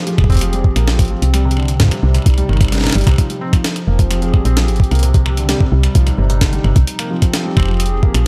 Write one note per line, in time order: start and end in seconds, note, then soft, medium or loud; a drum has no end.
0.00 1.34 F3 medium
0.00 0.23 D#4 medium
0.00 1.96 G4 medium
0.00 1.34 G#4 medium
0.05 0.18 F3 medium
0.05 2.08 C4 medium
0.05 closed hi-hat soft
0.18 0.70 F1 medium
0.18 finger snap medium
0.18 kick loud
0.24 kick medium
0.30 0.39 C4 loud
0.30 kick medium
0.30 closed hi-hat soft
0.32 closed hi-hat soft
0.34 kick medium
0.34 closed hi-hat soft
0.37 closed hi-hat soft
0.39 finger snap soft
0.39 closed hi-hat soft
0.41 0.51 F3 medium
0.41 closed hi-hat medium
0.53 0.64 G3 medium
0.53 closed hi-hat soft
0.64 kick loud
0.76 1.01 A#1 medium
0.76 0.87 A#3 medium
0.76 finger snap medium
0.76 closed hi-hat soft
0.88 0.97 F3 medium
0.88 snare loud
0.99 1.15 G#1 medium
0.99 1.09 F3 medium
0.99 finger snap soft
0.99 kick loud
0.99 closed hi-hat medium
1.02 closed hi-hat soft
1.05 closed hi-hat soft
1.08 1.21 F3 medium
1.08 closed hi-hat soft
1.22 1.86 C2 medium
1.22 closed hi-hat medium
1.34 3.18 C3 medium
1.34 1.43 G3 medium
1.34 finger snap medium
1.34 closed hi-hat medium
1.45 1.55 C3 medium
1.51 closed hi-hat soft
1.57 1.68 D3 medium
1.57 finger snap soft
1.60 finger snap soft
1.63 finger snap soft
1.65 finger snap soft
1.68 3.18 G3 medium
1.68 finger snap soft
1.68 closed hi-hat soft
1.71 finger snap soft
1.74 finger snap soft
1.77 1.91 F3 medium
1.77 finger snap soft
1.77 kick loud
1.77 snare loud
1.77 closed hi-hat medium
1.83 kick medium
1.86 kick medium
1.88 2.01 C3 medium
1.88 finger snap medium
1.88 kick medium
1.88 closed hi-hat soft
2.03 2.19 C2 medium
2.03 2.12 C3 medium
2.14 2.25 C3 medium
2.14 3.92 D#4 medium
2.14 finger snap soft
2.14 closed hi-hat soft
2.18 finger snap soft
2.22 finger snap soft
2.22 kick loud
2.26 2.42 C2 medium
2.26 finger snap soft
2.26 closed hi-hat medium
2.30 finger snap soft
2.34 2.47 G3 loud
2.34 finger snap soft
2.34 closed hi-hat soft
2.49 2.90 G1 medium
2.49 2.55 D#3 medium
2.49 finger snap soft
2.53 finger snap soft
2.57 2.70 C3 medium
2.57 finger snap soft
2.57 kick loud
2.61 finger snap soft
2.61 closed hi-hat soft
2.65 finger snap medium
2.68 2.82 C2 medium
2.68 finger snap medium
2.72 finger snap soft
2.72 snare medium
2.72 closed hi-hat medium
2.75 snare medium
2.78 snare medium
2.81 2.89 C3 medium
2.81 snare medium
2.84 snare medium
2.84 closed hi-hat soft
2.87 snare medium
2.87 closed hi-hat soft
2.90 snare medium
2.90 closed hi-hat soft
2.92 3.03 G1 medium
2.92 3.05 G3 medium
2.92 snare loud
2.92 closed hi-hat soft
2.95 closed hi-hat soft
2.98 closed hi-hat soft
3.01 closed hi-hat soft
3.04 3.15 C2 medium
3.04 3.12 C3 medium
3.04 finger snap medium
3.04 kick loud
3.04 closed hi-hat soft
3.07 finger snap medium
3.07 closed hi-hat medium
3.11 finger snap soft
3.14 finger snap soft
3.16 5.03 F3 medium
3.16 3.29 F3 medium
3.16 finger snap soft
3.16 kick loud
3.18 finger snap soft
3.18 closed hi-hat medium
3.30 3.41 G3 medium
3.30 closed hi-hat soft
3.41 3.51 C4 loud
3.53 3.62 F3 medium
3.53 finger snap medium
3.53 kick loud
3.53 closed hi-hat soft
3.64 5.77 C4 medium
3.64 snare loud
3.64 closed hi-hat medium
3.76 finger snap soft
3.76 closed hi-hat soft
3.87 4.39 F1 medium
3.87 3.98 A#3 medium
3.99 4.09 F3 medium
3.99 5.77 G4 medium
3.99 5.03 G#4 medium
3.99 kick loud
3.99 closed hi-hat soft
4.11 4.20 F3 medium
4.11 finger snap medium
4.11 closed hi-hat medium
4.22 4.33 F3 medium
4.22 closed hi-hat soft
4.34 4.45 G3 medium
4.34 finger snap soft
4.34 kick loud
4.45 4.70 A#1 medium
4.45 4.55 C4 loud
4.45 closed hi-hat soft
4.56 4.66 F3 medium
4.56 snare loud
4.56 closed hi-hat medium
4.68 4.84 G#1 medium
4.68 closed hi-hat soft
4.76 kick loud
4.76 closed hi-hat soft
4.84 closed hi-hat soft
4.91 5.55 C2 medium
4.91 5.02 A#3 medium
4.91 finger snap soft
4.91 closed hi-hat soft
4.95 closed hi-hat soft
4.99 5.12 C3 medium
4.99 closed hi-hat soft
5.03 6.88 C3 medium
5.03 closed hi-hat medium
5.14 5.24 C3 medium
5.14 kick loud
5.14 closed hi-hat soft
5.24 5.37 C3 medium
5.24 6.87 G3 medium
5.24 finger snap medium
5.37 5.48 D3 medium
5.37 closed hi-hat soft
5.49 5.58 G3 loud
5.49 finger snap medium
5.49 snare loud
5.49 closed hi-hat medium
5.60 5.70 C3 medium
5.60 kick loud
5.72 5.88 C2 loud
5.83 7.61 D#4 medium
5.83 finger snap medium
5.83 closed hi-hat soft
5.95 6.11 C2 medium
5.95 6.06 F3 medium
5.95 kick loud
5.95 closed hi-hat medium
6.06 6.16 C3 medium
6.06 finger snap medium
6.06 closed hi-hat soft
6.18 6.59 G1 medium
6.18 6.28 C3 medium
6.30 6.41 C3 medium
6.30 closed hi-hat soft
6.41 6.52 D3 medium
6.41 finger snap medium
6.41 kick loud
6.41 snare loud
6.41 closed hi-hat medium
6.53 6.62 G3 loud
6.53 closed hi-hat soft
6.64 6.72 G1 medium
6.64 6.74 C3 medium
6.64 finger snap soft
6.76 6.84 C2 medium
6.76 kick loud
6.76 closed hi-hat soft
6.87 8.27 F3 medium
6.87 closed hi-hat medium
6.98 7.10 A#3 medium
6.98 8.27 C4 medium
6.98 finger snap medium
6.98 closed hi-hat soft
7.11 7.20 F3 medium
7.21 7.32 F3 medium
7.21 8.27 G4 medium
7.21 finger snap medium
7.21 kick loud
7.21 closed hi-hat soft
7.34 7.45 F3 medium
7.34 snare loud
7.34 closed hi-hat medium
7.45 7.56 G3 medium
7.57 8.09 F1 loud
7.57 7.66 C4 loud
7.57 finger snap medium
7.57 kick loud
7.60 8.27 G#4 medium
7.60 finger snap medium
7.63 finger snap soft
7.66 7.78 F3 medium
7.66 finger snap soft
7.68 finger snap soft
7.71 finger snap soft
7.74 finger snap soft
7.77 finger snap soft
7.80 finger snap soft
7.80 closed hi-hat medium
7.86 closed hi-hat soft
8.03 8.14 A#3 medium
8.03 kick medium
8.14 8.27 A#1 medium
8.14 8.24 F3 medium
8.14 finger snap medium
8.14 closed hi-hat soft